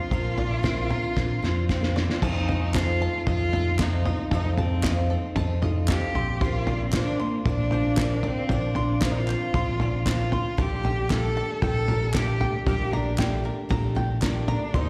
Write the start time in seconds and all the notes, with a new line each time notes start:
Already playing: C4 D4 F4 A#4 C5 D5
0.11 A#1 A#2 A#3 C4 D4 F4 A#4, kick, floor tom
0.38 C4 D4 F4 D5, floor tom
0.63 A#2 A#3 C4 D4 F4 C5, kick, snare, floor tom
0.89 C4 D4 F4 A#4, floor tom
1.16 A#1 A#3 C4 D4 F4, kick, snare
1.42 F2 C4 D4 F4 C5, snare
1.69 A#2 A#3 C4 D4 F4, kick, snare
1.83 snare
1.96 C4 D4 F4 D5, snare
2.10 snare
2.22 F2 F3 A3 C4 D#4 F4 A5, kick, floor tom, crash
2.48 A3 C4 D#4 F4 D#5, floor tom
2.74 F2 F3 A3 C4 D#4 F4 A4, kick, snare, clap
3.01 A3 C4 D#4 F4 A5
3.26 F2 A3 C4 D#4 F4 D#5, kick, floor tom
3.53 A3 C4 D#4 F4 A4, floor tom
3.79 F2 F3 A3 C4 D#4, kick, snare, clap
3.83 F4
4.05 C4 D#4 F4 D#5, floor tom
4.10 A3
4.31 F2 F3 A3 C4 D#4 F4 A4, kick, floor tom
4.58 C4 D#4 F4 A5, floor tom
4.62 A3
4.83 F2 F3 A3 C4 D#4 F4 D#5, kick, snare, clap
5.10 A3 C4 D#4 F4 A4
5.36 F2 A3 C4 D#4 F4 A5, kick, floor tom
5.62 A3 C4 D#4 F4 D#5, floor tom
5.88 F2 F3 A3 C4 D#4 F4 G4 A4, kick, snare, clap
6.15 A#1 C4 D4 F4 C6, floor tom
6.41 A#2 A#3 C4 D4 F4 C6, kick, floor tom
6.67 C4 F4 D5, floor tom
6.72 D4
6.87 C4
6.93 A#2 A#3 C4 D4 C5, kick, snare, clap
6.97 F4
7.20 A#3 C4 D4 F4 C6
7.46 A#1 A#3 C4 D4 F4 D5, kick, floor tom
7.71 C4 F4 C5, floor tom
7.76 D4
7.97 A#2 A#3 C4 D4 F4, kick, snare, clap
8.23 C4 D4 F4 D5, floor tom
8.27 C4
8.49 A#1 A#2 A#3 C4 D4 F4 C5, kick, floor tom
8.53 D4
8.75 C4 F4 C6, floor tom
8.79 D4
9.01 A#2 A#3 C4 D4 F4 D5, kick, snare, clap
9.05 F4
9.10 D#4
9.19 F4
9.28 C4 F4 C5, clap
9.32 D4
9.54 A#1 A#3 C4 D4 F4 C6, kick, floor tom
9.80 C4 D4 F4 D5, floor tom
10.06 A#2 A#3 C4 D4 F4 C5, kick, snare, clap
10.32 C4 D4 F4 C6, floor tom
10.57 A#1 A#2 G3 A3 D4 G4 A5, kick, floor tom
10.83 A3 D4 G4 G5, floor tom
11.10 A#2 G3 A3 A#3 D4 G4 A4, kick, snare, clap
11.36 A3 D4 G4 A5
11.62 A#1 G3 A3 D4 G4 A4 G5, kick, floor tom
11.88 A3 D4 G4 A#4, floor tom
12.14 A#2 G3 A3 D4 G4, kick, snare, clap
12.40 A3 D4 G4 G5, floor tom
12.66 A#1 A#2 G3 A3 D4 G4 A#4, kick, floor tom
12.93 A3 D4 G4 A#5, floor tom
13.18 A#2 G3 A3 D4 G4 G5, kick, snare, clap
13.44 A3 D4 G4 A#4
13.69 A#1 G3 A3 D4 G4 A#5, kick, floor tom
13.95 A3 D4 G4 G5, floor tom
14.21 A#2 G3 A3 D4 G4 A#4, kick, snare, clap
14.48 A3 D4 G4 A#5, floor tom
14.74 D#2 D#3 A#3 C4 D#4 G4 C6, kick, floor tom